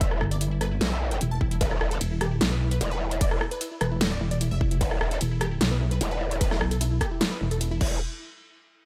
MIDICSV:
0, 0, Header, 1, 5, 480
1, 0, Start_track
1, 0, Tempo, 400000
1, 11, Time_signature, 4, 2, 24, 8
1, 10622, End_track
2, 0, Start_track
2, 0, Title_t, "Synth pluck"
2, 0, Program_c, 0, 84
2, 9, Note_on_c, 0, 76, 106
2, 95, Note_off_c, 0, 76, 0
2, 135, Note_on_c, 0, 64, 72
2, 215, Note_off_c, 0, 64, 0
2, 251, Note_on_c, 0, 64, 65
2, 336, Note_off_c, 0, 64, 0
2, 375, Note_on_c, 0, 74, 96
2, 455, Note_off_c, 0, 74, 0
2, 491, Note_on_c, 0, 64, 64
2, 576, Note_off_c, 0, 64, 0
2, 615, Note_on_c, 0, 64, 67
2, 694, Note_off_c, 0, 64, 0
2, 732, Note_on_c, 0, 71, 96
2, 817, Note_off_c, 0, 71, 0
2, 857, Note_on_c, 0, 64, 65
2, 936, Note_off_c, 0, 64, 0
2, 974, Note_on_c, 0, 64, 67
2, 1058, Note_off_c, 0, 64, 0
2, 1097, Note_on_c, 0, 76, 90
2, 1175, Note_off_c, 0, 76, 0
2, 1211, Note_on_c, 0, 64, 67
2, 1296, Note_off_c, 0, 64, 0
2, 1336, Note_on_c, 0, 79, 89
2, 1415, Note_off_c, 0, 79, 0
2, 1452, Note_on_c, 0, 64, 65
2, 1536, Note_off_c, 0, 64, 0
2, 1575, Note_on_c, 0, 81, 94
2, 1655, Note_off_c, 0, 81, 0
2, 1692, Note_on_c, 0, 64, 67
2, 1776, Note_off_c, 0, 64, 0
2, 1815, Note_on_c, 0, 64, 69
2, 1895, Note_off_c, 0, 64, 0
2, 1931, Note_on_c, 0, 71, 104
2, 2016, Note_off_c, 0, 71, 0
2, 2055, Note_on_c, 0, 64, 69
2, 2134, Note_off_c, 0, 64, 0
2, 2171, Note_on_c, 0, 64, 66
2, 2256, Note_off_c, 0, 64, 0
2, 2294, Note_on_c, 0, 69, 97
2, 2374, Note_off_c, 0, 69, 0
2, 2412, Note_on_c, 0, 64, 69
2, 2496, Note_off_c, 0, 64, 0
2, 2536, Note_on_c, 0, 64, 63
2, 2615, Note_off_c, 0, 64, 0
2, 2652, Note_on_c, 0, 67, 97
2, 2736, Note_off_c, 0, 67, 0
2, 2776, Note_on_c, 0, 64, 66
2, 2855, Note_off_c, 0, 64, 0
2, 2891, Note_on_c, 0, 64, 67
2, 2976, Note_off_c, 0, 64, 0
2, 3015, Note_on_c, 0, 71, 88
2, 3095, Note_off_c, 0, 71, 0
2, 3131, Note_on_c, 0, 64, 70
2, 3216, Note_off_c, 0, 64, 0
2, 3255, Note_on_c, 0, 71, 87
2, 3335, Note_off_c, 0, 71, 0
2, 3371, Note_on_c, 0, 64, 63
2, 3456, Note_off_c, 0, 64, 0
2, 3496, Note_on_c, 0, 71, 98
2, 3575, Note_off_c, 0, 71, 0
2, 3612, Note_on_c, 0, 64, 66
2, 3697, Note_off_c, 0, 64, 0
2, 3737, Note_on_c, 0, 64, 65
2, 3816, Note_off_c, 0, 64, 0
2, 3851, Note_on_c, 0, 74, 103
2, 3936, Note_off_c, 0, 74, 0
2, 3976, Note_on_c, 0, 64, 67
2, 4055, Note_off_c, 0, 64, 0
2, 4092, Note_on_c, 0, 64, 65
2, 4177, Note_off_c, 0, 64, 0
2, 4217, Note_on_c, 0, 71, 100
2, 4295, Note_off_c, 0, 71, 0
2, 4333, Note_on_c, 0, 64, 66
2, 4417, Note_off_c, 0, 64, 0
2, 4458, Note_on_c, 0, 64, 67
2, 4536, Note_off_c, 0, 64, 0
2, 4572, Note_on_c, 0, 71, 92
2, 4657, Note_off_c, 0, 71, 0
2, 4698, Note_on_c, 0, 64, 66
2, 4776, Note_off_c, 0, 64, 0
2, 4814, Note_on_c, 0, 64, 65
2, 4897, Note_off_c, 0, 64, 0
2, 4936, Note_on_c, 0, 74, 93
2, 5015, Note_off_c, 0, 74, 0
2, 5051, Note_on_c, 0, 64, 67
2, 5136, Note_off_c, 0, 64, 0
2, 5175, Note_on_c, 0, 74, 84
2, 5254, Note_off_c, 0, 74, 0
2, 5292, Note_on_c, 0, 64, 67
2, 5377, Note_off_c, 0, 64, 0
2, 5415, Note_on_c, 0, 76, 101
2, 5494, Note_off_c, 0, 76, 0
2, 5532, Note_on_c, 0, 64, 67
2, 5616, Note_off_c, 0, 64, 0
2, 5655, Note_on_c, 0, 64, 66
2, 5735, Note_off_c, 0, 64, 0
2, 5771, Note_on_c, 0, 71, 105
2, 5856, Note_off_c, 0, 71, 0
2, 5896, Note_on_c, 0, 64, 72
2, 5975, Note_off_c, 0, 64, 0
2, 6012, Note_on_c, 0, 64, 61
2, 6096, Note_off_c, 0, 64, 0
2, 6136, Note_on_c, 0, 69, 97
2, 6215, Note_off_c, 0, 69, 0
2, 6251, Note_on_c, 0, 64, 67
2, 6336, Note_off_c, 0, 64, 0
2, 6376, Note_on_c, 0, 64, 66
2, 6455, Note_off_c, 0, 64, 0
2, 6493, Note_on_c, 0, 67, 98
2, 6577, Note_off_c, 0, 67, 0
2, 6616, Note_on_c, 0, 64, 64
2, 6695, Note_off_c, 0, 64, 0
2, 6731, Note_on_c, 0, 64, 69
2, 6816, Note_off_c, 0, 64, 0
2, 6855, Note_on_c, 0, 71, 89
2, 6935, Note_off_c, 0, 71, 0
2, 6971, Note_on_c, 0, 64, 66
2, 7056, Note_off_c, 0, 64, 0
2, 7094, Note_on_c, 0, 71, 86
2, 7174, Note_off_c, 0, 71, 0
2, 7210, Note_on_c, 0, 64, 65
2, 7296, Note_off_c, 0, 64, 0
2, 7334, Note_on_c, 0, 71, 94
2, 7414, Note_off_c, 0, 71, 0
2, 7450, Note_on_c, 0, 64, 70
2, 7536, Note_off_c, 0, 64, 0
2, 7573, Note_on_c, 0, 64, 65
2, 7654, Note_off_c, 0, 64, 0
2, 7689, Note_on_c, 0, 71, 104
2, 7775, Note_off_c, 0, 71, 0
2, 7815, Note_on_c, 0, 64, 70
2, 7894, Note_off_c, 0, 64, 0
2, 7930, Note_on_c, 0, 64, 67
2, 8016, Note_off_c, 0, 64, 0
2, 8055, Note_on_c, 0, 69, 93
2, 8134, Note_off_c, 0, 69, 0
2, 8169, Note_on_c, 0, 64, 68
2, 8255, Note_off_c, 0, 64, 0
2, 8294, Note_on_c, 0, 64, 68
2, 8374, Note_off_c, 0, 64, 0
2, 8410, Note_on_c, 0, 67, 96
2, 8496, Note_off_c, 0, 67, 0
2, 8534, Note_on_c, 0, 64, 65
2, 8614, Note_off_c, 0, 64, 0
2, 8650, Note_on_c, 0, 64, 67
2, 8735, Note_off_c, 0, 64, 0
2, 8775, Note_on_c, 0, 71, 92
2, 8854, Note_off_c, 0, 71, 0
2, 8890, Note_on_c, 0, 64, 64
2, 8976, Note_off_c, 0, 64, 0
2, 9015, Note_on_c, 0, 69, 86
2, 9094, Note_off_c, 0, 69, 0
2, 9131, Note_on_c, 0, 64, 62
2, 9216, Note_off_c, 0, 64, 0
2, 9255, Note_on_c, 0, 64, 100
2, 9335, Note_off_c, 0, 64, 0
2, 9369, Note_on_c, 0, 64, 92
2, 9550, Note_off_c, 0, 64, 0
2, 10622, End_track
3, 0, Start_track
3, 0, Title_t, "Wobble bass"
3, 0, Program_c, 1, 39
3, 251, Note_on_c, 1, 31, 97
3, 952, Note_off_c, 1, 31, 0
3, 1451, Note_on_c, 1, 28, 102
3, 1673, Note_off_c, 1, 28, 0
3, 1691, Note_on_c, 1, 28, 104
3, 1913, Note_off_c, 1, 28, 0
3, 2412, Note_on_c, 1, 28, 96
3, 2873, Note_off_c, 1, 28, 0
3, 2892, Note_on_c, 1, 35, 101
3, 3353, Note_off_c, 1, 35, 0
3, 4571, Note_on_c, 1, 28, 101
3, 5033, Note_off_c, 1, 28, 0
3, 5051, Note_on_c, 1, 28, 97
3, 5396, Note_off_c, 1, 28, 0
3, 5416, Note_on_c, 1, 29, 98
3, 5753, Note_off_c, 1, 29, 0
3, 6252, Note_on_c, 1, 28, 100
3, 6713, Note_off_c, 1, 28, 0
3, 6731, Note_on_c, 1, 35, 104
3, 7193, Note_off_c, 1, 35, 0
3, 7931, Note_on_c, 1, 35, 94
3, 8393, Note_off_c, 1, 35, 0
3, 8891, Note_on_c, 1, 28, 95
3, 9371, Note_off_c, 1, 28, 0
3, 10622, End_track
4, 0, Start_track
4, 0, Title_t, "Wobble bass"
4, 0, Program_c, 2, 39
4, 0, Note_on_c, 2, 28, 98
4, 233, Note_off_c, 2, 28, 0
4, 971, Note_on_c, 2, 35, 101
4, 1433, Note_off_c, 2, 35, 0
4, 1931, Note_on_c, 2, 28, 100
4, 2153, Note_off_c, 2, 28, 0
4, 2171, Note_on_c, 2, 28, 101
4, 2393, Note_off_c, 2, 28, 0
4, 3371, Note_on_c, 2, 28, 95
4, 4073, Note_off_c, 2, 28, 0
4, 5771, Note_on_c, 2, 28, 98
4, 5993, Note_off_c, 2, 28, 0
4, 6011, Note_on_c, 2, 28, 107
4, 6233, Note_off_c, 2, 28, 0
4, 7211, Note_on_c, 2, 28, 96
4, 7913, Note_off_c, 2, 28, 0
4, 9371, Note_on_c, 2, 28, 102
4, 9594, Note_off_c, 2, 28, 0
4, 10622, End_track
5, 0, Start_track
5, 0, Title_t, "Drums"
5, 11, Note_on_c, 9, 36, 125
5, 12, Note_on_c, 9, 42, 80
5, 131, Note_off_c, 9, 36, 0
5, 132, Note_off_c, 9, 42, 0
5, 136, Note_on_c, 9, 37, 52
5, 252, Note_off_c, 9, 37, 0
5, 252, Note_on_c, 9, 37, 76
5, 372, Note_off_c, 9, 37, 0
5, 376, Note_on_c, 9, 42, 51
5, 492, Note_off_c, 9, 42, 0
5, 492, Note_on_c, 9, 42, 82
5, 612, Note_off_c, 9, 42, 0
5, 732, Note_on_c, 9, 37, 59
5, 732, Note_on_c, 9, 42, 53
5, 852, Note_off_c, 9, 37, 0
5, 852, Note_off_c, 9, 42, 0
5, 972, Note_on_c, 9, 38, 126
5, 972, Note_on_c, 9, 42, 76
5, 1092, Note_off_c, 9, 38, 0
5, 1092, Note_off_c, 9, 42, 0
5, 1336, Note_on_c, 9, 42, 53
5, 1452, Note_off_c, 9, 42, 0
5, 1452, Note_on_c, 9, 42, 76
5, 1572, Note_off_c, 9, 42, 0
5, 1691, Note_on_c, 9, 36, 111
5, 1811, Note_off_c, 9, 36, 0
5, 1816, Note_on_c, 9, 42, 54
5, 1931, Note_off_c, 9, 42, 0
5, 1931, Note_on_c, 9, 36, 121
5, 1931, Note_on_c, 9, 42, 77
5, 1931, Note_on_c, 9, 51, 61
5, 2051, Note_off_c, 9, 36, 0
5, 2051, Note_off_c, 9, 42, 0
5, 2051, Note_off_c, 9, 51, 0
5, 2055, Note_on_c, 9, 37, 54
5, 2172, Note_off_c, 9, 37, 0
5, 2172, Note_on_c, 9, 37, 80
5, 2292, Note_off_c, 9, 37, 0
5, 2296, Note_on_c, 9, 42, 51
5, 2411, Note_off_c, 9, 42, 0
5, 2411, Note_on_c, 9, 42, 81
5, 2411, Note_on_c, 9, 51, 46
5, 2531, Note_off_c, 9, 42, 0
5, 2531, Note_off_c, 9, 51, 0
5, 2652, Note_on_c, 9, 37, 66
5, 2652, Note_on_c, 9, 42, 53
5, 2772, Note_off_c, 9, 37, 0
5, 2772, Note_off_c, 9, 42, 0
5, 2892, Note_on_c, 9, 38, 123
5, 2892, Note_on_c, 9, 42, 75
5, 2892, Note_on_c, 9, 51, 64
5, 3012, Note_off_c, 9, 38, 0
5, 3012, Note_off_c, 9, 42, 0
5, 3012, Note_off_c, 9, 51, 0
5, 3256, Note_on_c, 9, 42, 52
5, 3372, Note_off_c, 9, 42, 0
5, 3372, Note_on_c, 9, 42, 74
5, 3372, Note_on_c, 9, 51, 46
5, 3492, Note_off_c, 9, 42, 0
5, 3492, Note_off_c, 9, 51, 0
5, 3736, Note_on_c, 9, 42, 51
5, 3852, Note_off_c, 9, 42, 0
5, 3852, Note_on_c, 9, 36, 119
5, 3852, Note_on_c, 9, 42, 76
5, 3852, Note_on_c, 9, 51, 65
5, 3972, Note_off_c, 9, 36, 0
5, 3972, Note_off_c, 9, 42, 0
5, 3972, Note_off_c, 9, 51, 0
5, 3976, Note_on_c, 9, 37, 56
5, 4092, Note_off_c, 9, 37, 0
5, 4092, Note_on_c, 9, 37, 86
5, 4212, Note_off_c, 9, 37, 0
5, 4216, Note_on_c, 9, 42, 55
5, 4332, Note_off_c, 9, 42, 0
5, 4332, Note_on_c, 9, 42, 79
5, 4332, Note_on_c, 9, 51, 48
5, 4452, Note_off_c, 9, 42, 0
5, 4452, Note_off_c, 9, 51, 0
5, 4571, Note_on_c, 9, 37, 67
5, 4571, Note_on_c, 9, 42, 53
5, 4691, Note_off_c, 9, 37, 0
5, 4691, Note_off_c, 9, 42, 0
5, 4811, Note_on_c, 9, 38, 117
5, 4811, Note_on_c, 9, 42, 77
5, 4811, Note_on_c, 9, 51, 63
5, 4931, Note_off_c, 9, 38, 0
5, 4931, Note_off_c, 9, 42, 0
5, 4931, Note_off_c, 9, 51, 0
5, 5175, Note_on_c, 9, 42, 52
5, 5291, Note_off_c, 9, 42, 0
5, 5291, Note_on_c, 9, 42, 77
5, 5291, Note_on_c, 9, 51, 46
5, 5411, Note_off_c, 9, 42, 0
5, 5411, Note_off_c, 9, 51, 0
5, 5531, Note_on_c, 9, 36, 108
5, 5651, Note_off_c, 9, 36, 0
5, 5655, Note_on_c, 9, 42, 53
5, 5771, Note_on_c, 9, 36, 113
5, 5772, Note_off_c, 9, 42, 0
5, 5772, Note_on_c, 9, 42, 81
5, 5772, Note_on_c, 9, 51, 68
5, 5891, Note_off_c, 9, 36, 0
5, 5892, Note_off_c, 9, 42, 0
5, 5892, Note_off_c, 9, 51, 0
5, 5895, Note_on_c, 9, 37, 57
5, 6011, Note_off_c, 9, 37, 0
5, 6011, Note_on_c, 9, 37, 90
5, 6131, Note_off_c, 9, 37, 0
5, 6135, Note_on_c, 9, 42, 55
5, 6251, Note_off_c, 9, 42, 0
5, 6251, Note_on_c, 9, 42, 83
5, 6251, Note_on_c, 9, 51, 49
5, 6371, Note_off_c, 9, 42, 0
5, 6371, Note_off_c, 9, 51, 0
5, 6491, Note_on_c, 9, 37, 66
5, 6491, Note_on_c, 9, 42, 53
5, 6611, Note_off_c, 9, 37, 0
5, 6611, Note_off_c, 9, 42, 0
5, 6731, Note_on_c, 9, 38, 117
5, 6731, Note_on_c, 9, 42, 77
5, 6731, Note_on_c, 9, 51, 67
5, 6851, Note_off_c, 9, 38, 0
5, 6851, Note_off_c, 9, 42, 0
5, 6851, Note_off_c, 9, 51, 0
5, 7095, Note_on_c, 9, 42, 52
5, 7211, Note_off_c, 9, 42, 0
5, 7211, Note_on_c, 9, 42, 76
5, 7211, Note_on_c, 9, 51, 48
5, 7331, Note_off_c, 9, 42, 0
5, 7331, Note_off_c, 9, 51, 0
5, 7576, Note_on_c, 9, 42, 54
5, 7691, Note_off_c, 9, 42, 0
5, 7691, Note_on_c, 9, 36, 121
5, 7691, Note_on_c, 9, 42, 83
5, 7691, Note_on_c, 9, 51, 72
5, 7811, Note_off_c, 9, 36, 0
5, 7811, Note_off_c, 9, 42, 0
5, 7811, Note_off_c, 9, 51, 0
5, 7815, Note_on_c, 9, 37, 56
5, 7815, Note_on_c, 9, 38, 35
5, 7931, Note_off_c, 9, 37, 0
5, 7931, Note_on_c, 9, 37, 86
5, 7935, Note_off_c, 9, 38, 0
5, 8051, Note_off_c, 9, 37, 0
5, 8055, Note_on_c, 9, 42, 56
5, 8172, Note_off_c, 9, 42, 0
5, 8172, Note_on_c, 9, 42, 87
5, 8172, Note_on_c, 9, 51, 49
5, 8292, Note_off_c, 9, 42, 0
5, 8292, Note_off_c, 9, 51, 0
5, 8411, Note_on_c, 9, 36, 57
5, 8411, Note_on_c, 9, 37, 66
5, 8411, Note_on_c, 9, 42, 54
5, 8531, Note_off_c, 9, 36, 0
5, 8531, Note_off_c, 9, 37, 0
5, 8531, Note_off_c, 9, 42, 0
5, 8651, Note_on_c, 9, 38, 115
5, 8651, Note_on_c, 9, 42, 83
5, 8651, Note_on_c, 9, 51, 73
5, 8771, Note_off_c, 9, 38, 0
5, 8771, Note_off_c, 9, 42, 0
5, 8771, Note_off_c, 9, 51, 0
5, 9015, Note_on_c, 9, 42, 56
5, 9131, Note_off_c, 9, 42, 0
5, 9131, Note_on_c, 9, 42, 81
5, 9131, Note_on_c, 9, 51, 50
5, 9251, Note_off_c, 9, 42, 0
5, 9251, Note_off_c, 9, 51, 0
5, 9371, Note_on_c, 9, 36, 113
5, 9371, Note_on_c, 9, 49, 87
5, 9491, Note_off_c, 9, 36, 0
5, 9491, Note_off_c, 9, 49, 0
5, 10622, End_track
0, 0, End_of_file